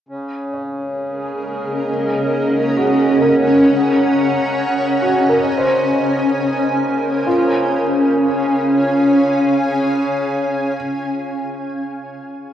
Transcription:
0.09 7.24 C#3 medium
0.09 7.24 C#4 medium
0.29 2.59 G#4 medium
0.49 2.59 A#4 medium
0.49 2.29 C#5 soft
0.89 2.60 D#5 medium
2.11 4.40 F#5 medium
2.37 5.47 C#5 medium
2.70 4.40 A#5 medium
2.77 4.08 F#4 medium
3.21 4.08 A#4 medium
4.24 6.19 D#5 medium
4.39 7.27 G#5 medium
5.02 5.88 F#4 soft
5.29 6.12 A#4 soft
5.58 6.38 C5 soft
5.66 7.26 A#4 medium
5.97 7.27 C5 medium
7.25 10.73 C#3 medium
7.25 10.73 C#4 medium
7.25 10.74 F4 soft
7.40 10.87 C#5 medium
7.51 10.99 F5 medium
7.67 11.15 G#5 medium

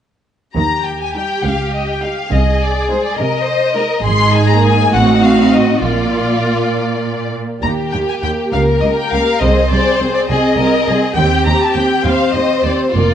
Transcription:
0.56 1.11 D#2 soft
0.56 1.27 D#3 soft
0.56 2.28 G4 soft
0.56 0.84 A#5 soft
0.86 1.01 G5 soft
1.02 1.15 G#5 soft
1.16 1.38 G3 soft
1.16 1.37 D#4 soft
1.16 1.44 G5 soft
1.45 1.99 C#2 soft
1.45 2.15 C#3 soft
1.45 1.74 F5 soft
1.74 1.88 D#5 soft
1.89 2.03 G5 soft
2.03 2.25 G3 soft
2.03 2.25 D#4 soft
2.03 2.32 F5 soft
2.31 2.86 C2 soft
2.31 3.02 C3 soft
2.31 3.17 G#4 soft
2.31 2.62 D#5 medium
2.62 2.91 D5 soft
2.90 3.11 G#3 soft
2.90 3.12 D#4 soft
2.90 3.04 C5 soft
3.04 3.19 D5 soft
3.18 3.89 C3 medium
3.18 3.47 A#4 soft
3.18 4.05 D#5 medium
3.45 3.76 C5 soft
3.75 3.99 G#3 soft
3.75 3.99 D#4 soft
3.75 4.05 A#4 soft
4.05 4.61 G#1 soft
4.05 4.91 G#2 medium
4.05 4.48 G#3 soft
4.05 4.91 D#4 soft
4.05 4.93 G#4 medium
4.05 4.35 C6 medium
4.36 4.51 G#5 medium
4.50 4.96 A#3 soft
4.50 4.66 A#5 medium
4.64 4.94 G#5 medium
4.94 5.50 A1 soft
4.94 5.84 A2 soft
4.94 5.84 C4 soft
4.94 5.82 D#4 soft
4.94 5.82 F#4 medium
4.94 5.24 F#5 medium
5.24 5.54 F5 medium
5.53 5.83 D#5 medium
5.82 6.40 A#1 soft
5.82 7.41 A#2 soft
5.82 7.41 A#3 soft
5.82 7.19 F4 soft
5.82 7.44 F4 soft
5.82 7.31 D5 medium
7.63 7.71 D#2 soft
7.63 7.92 D#2 soft
7.63 7.94 A#3 soft
7.63 8.50 G4 soft
7.63 7.94 G4 soft
7.63 7.71 A#5 medium
7.93 8.02 D#2 soft
7.93 8.23 A#3 soft
7.93 8.24 G4 soft
7.93 7.99 G5 medium
8.09 8.15 G#5 medium
8.23 8.31 D#2 soft
8.23 8.53 A#3 soft
8.23 8.52 G4 soft
8.23 8.31 G5 medium
8.53 8.61 C#2 soft
8.53 8.81 C#2 soft
8.53 8.82 A#3 soft
8.53 8.82 G4 soft
8.53 9.41 A#4 soft
8.53 8.61 F5 soft
8.81 8.91 C#2 soft
8.81 9.12 A#3 soft
8.81 9.12 G4 soft
8.81 8.88 D#5 soft
8.98 9.13 G5 medium
9.13 9.21 C#2 soft
9.13 9.42 A#3 soft
9.13 9.42 G4 soft
9.13 9.42 F5 medium
9.41 9.50 C2 soft
9.41 9.70 C2 soft
9.41 9.72 C4 soft
9.41 9.72 G#4 soft
9.41 10.30 C5 medium
9.41 9.71 D#5 medium
9.71 9.80 C2 soft
9.71 10.01 C4 soft
9.71 10.01 G#4 soft
9.71 10.00 D5 medium
10.01 10.09 C2 soft
10.01 10.30 C4 soft
10.01 10.30 G#4 soft
10.01 10.15 C5 medium
10.15 10.21 D5 medium
10.29 10.38 C2 medium
10.29 10.58 C4 soft
10.29 10.59 G#4 soft
10.29 10.58 G#4 soft
10.29 11.15 D#5 medium
10.58 10.66 C2 soft
10.58 10.87 C4 soft
10.58 10.87 G#4 soft
10.58 10.88 A#4 medium
10.87 10.95 C2 soft
10.87 11.16 C4 soft
10.87 11.17 G#4 soft
11.15 11.44 D#2 soft
11.15 11.25 D#2 medium
11.15 11.45 C4 soft
11.15 12.04 G4 medium
11.15 11.46 G4 soft
11.15 11.45 G5 medium
11.46 11.54 D#2 soft
11.46 11.74 C4 soft
11.46 11.74 G4 soft
11.46 11.61 A#5 medium
11.62 11.77 A5 medium
11.75 11.83 D#2 soft
11.75 12.04 C4 soft
11.75 12.03 G4 soft
11.75 12.06 G5 medium
12.05 12.13 D#2 soft
12.05 12.34 C4 soft
12.05 12.33 G4 soft
12.05 12.94 C5 medium
12.05 12.36 F5 medium
12.34 12.43 D#2 soft
12.34 12.63 C4 soft
12.34 12.63 G4 soft
12.34 12.65 D#5 medium
12.64 12.73 D#2 soft
12.64 12.95 C4 soft
12.64 12.95 G4 soft
12.64 12.81 D5 soft
12.82 12.97 C5 soft
12.94 13.14 F1 soft
12.94 13.03 F2 soft
12.94 13.14 A#3 soft
12.94 13.14 F4 soft
12.94 13.14 A#4 soft
12.94 13.14 D5 soft

